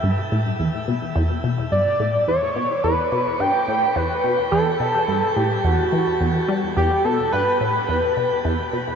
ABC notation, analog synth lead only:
X:1
M:4/4
L:1/8
Q:1/4=107
K:Edor
V:1 name="Analog synth lead"
z6 d2 | c2 B2 g2 B2 | A3 G F3 z | G A B B3 z2 |]